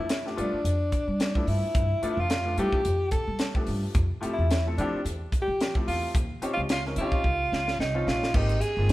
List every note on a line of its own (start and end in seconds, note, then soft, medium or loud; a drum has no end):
0.00 0.35 F2 medium
0.00 0.28 E4 medium
0.09 snare loud
0.09 closed hi-hat medium
0.25 0.34 F3 medium
0.25 0.34 A3 medium
0.25 0.34 B3 medium
0.25 0.35 D4 medium
0.25 0.35 G4 medium
0.25 snare soft
0.36 0.57 F3 medium
0.36 0.53 G3 medium
0.36 0.57 A3 medium
0.36 0.58 B3 medium
0.36 0.58 D4 medium
0.36 0.58 F4 medium
0.36 closed hi-hat soft
0.41 1.18 D4 medium
0.53 muted upright bass stroke soft
0.64 0.91 F2 medium
0.64 0.72 D4 soft
0.64 0.73 G4 soft
0.64 closed hi-hat medium
0.92 muted upright bass stroke soft
0.92 kick medium
0.92 closed hi-hat soft
1.08 1.45 G3 medium
1.20 1.50 D4 medium
1.20 snare medium
1.20 closed hi-hat medium
1.35 1.82 F3 medium
1.35 1.82 A3 medium
1.35 1.82 B3 medium
1.35 1.83 D4 medium
1.35 1.83 E4 medium
1.35 kick medium
1.47 1.62 G2 medium
1.47 2.21 E4 medium
1.47 open hi-hat medium
1.75 1.89 G2 medium
1.75 kick loud
1.75 closed hi-hat medium
2.02 2.23 F3 medium
2.02 2.23 A3 medium
2.02 2.23 B3 medium
2.02 2.23 D4 medium
2.02 2.23 F4 medium
2.02 muted upright bass stroke soft
2.02 closed hi-hat medium
2.17 2.55 F2 medium
2.17 2.58 F4 medium
2.30 2.37 D4 soft
2.30 2.39 A4 soft
2.30 snare loud
2.30 closed hi-hat medium
2.45 2.54 F3 medium
2.45 2.54 A3 medium
2.45 2.54 B3 medium
2.45 2.54 D4 medium
2.45 2.54 F4 medium
2.57 2.78 F3 medium
2.57 2.72 G3 medium
2.57 2.78 A3 medium
2.57 2.78 B3 medium
2.57 2.79 D4 medium
2.57 2.79 E4 medium
2.57 3.09 G4 medium
2.57 closed hi-hat medium
2.73 muted upright bass stroke soft
2.73 kick medium
2.85 3.11 F2 medium
2.85 2.93 D4 soft
2.85 2.94 E4 soft
2.85 closed hi-hat medium
3.11 3.63 A4 medium
3.11 muted upright bass stroke soft
3.11 kick medium
3.11 closed hi-hat medium
3.27 3.65 G3 medium
3.39 snare medium
3.39 closed hi-hat medium
3.54 3.95 F3 medium
3.54 3.95 A3 medium
3.54 3.95 B3 medium
3.54 3.95 D4 medium
3.54 3.95 G4 medium
3.54 kick medium
3.67 3.82 G2 medium
3.67 open hi-hat medium
3.95 4.10 F2 medium
3.95 kick loud
3.95 closed hi-hat medium
4.21 4.42 F3 medium
4.21 4.42 A3 medium
4.21 4.42 C4 medium
4.21 4.42 E4 medium
4.21 4.43 G4 medium
4.21 muted upright bass stroke soft
4.21 closed hi-hat medium
4.33 4.67 E4 medium
4.39 4.75 E2 medium
4.51 snare loud
4.51 closed hi-hat medium
4.67 4.75 F3 medium
4.67 4.75 A3 medium
4.67 4.75 C4 medium
4.67 4.75 E4 medium
4.67 4.75 A4 medium
4.77 4.92 F3 medium
4.77 4.98 F3 medium
4.77 4.98 A3 medium
4.77 4.99 C4 medium
4.77 5.03 D4 medium
4.77 4.99 E4 medium
4.77 4.99 G4 loud
4.77 closed hi-hat medium
4.93 muted upright bass stroke soft
5.05 5.30 E2 medium
5.05 5.13 E4 soft
5.05 5.14 A4 soft
5.05 closed hi-hat medium
5.32 muted upright bass stroke soft
5.32 kick medium
5.32 closed hi-hat medium
5.42 5.76 G4 medium
5.48 5.85 F3 medium
5.61 snare loud
5.61 closed hi-hat medium
5.75 6.15 F3 medium
5.75 6.16 A3 medium
5.75 6.16 C4 medium
5.75 6.16 E4 medium
5.75 6.16 G4 medium
5.75 kick medium
5.87 6.02 E2 medium
5.87 6.13 F4 medium
5.87 open hi-hat medium
6.15 6.29 D#2 medium
6.15 kick loud
6.15 closed hi-hat medium
6.42 6.62 F3 medium
6.42 6.62 C4 medium
6.42 6.63 C#4 medium
6.42 6.62 D#4 medium
6.42 6.63 G4 medium
6.42 muted upright bass stroke soft
6.42 closed hi-hat medium
6.54 6.94 C#2 medium
6.54 6.62 F4 medium
6.69 6.83 F4 medium
6.69 snare loud
6.69 closed hi-hat medium
6.85 6.94 F3 medium
6.85 6.95 C4 medium
6.85 6.95 C#4 medium
6.85 6.95 D#4 medium
6.85 6.95 A#4 medium
6.85 snare soft
6.96 7.11 D#3 medium
6.96 7.19 F3 medium
6.96 7.19 C4 medium
6.96 7.76 F4 medium
6.96 closed hi-hat medium
7.01 7.19 C#4 medium
7.01 7.19 D#4 medium
7.01 7.20 G4 loud
7.12 muted upright bass stroke soft
7.12 kick medium
7.24 7.50 C#2 medium
7.24 7.33 D#4 soft
7.24 7.34 A#4 soft
7.24 kick medium
7.52 7.77 C#2 medium
7.52 snare medium
7.68 snare medium
7.79 8.04 C2 medium
7.79 8.09 D#4 medium
7.79 7.95 G5 medium
7.79 snare medium
7.94 8.35 F3 medium
7.94 8.34 C4 medium
7.94 8.35 C#4 medium
7.94 8.35 D#4 medium
7.94 8.35 F4 medium
7.94 8.06 F5 medium
8.06 8.32 A#1 medium
8.06 8.36 F4 medium
8.06 8.32 D#5 medium
8.06 snare medium
8.23 snare medium
8.34 8.60 G#1 medium
8.34 8.55 D#3 medium
8.34 8.54 G#3 medium
8.34 8.55 A#3 medium
8.34 8.55 C4 medium
8.34 8.63 D#4 medium
8.34 8.55 G4 medium
8.34 kick loud
8.34 crash medium
8.49 closed hi-hat soft
8.61 8.93 G#4 loud
8.61 closed hi-hat medium
8.77 8.88 G1 medium
8.77 8.93 D#3 medium
8.77 8.93 G#3 medium
8.77 8.93 A#3 medium
8.77 8.93 C4 medium
8.77 8.93 F4 medium
8.89 8.93 G#2 medium
8.89 closed hi-hat medium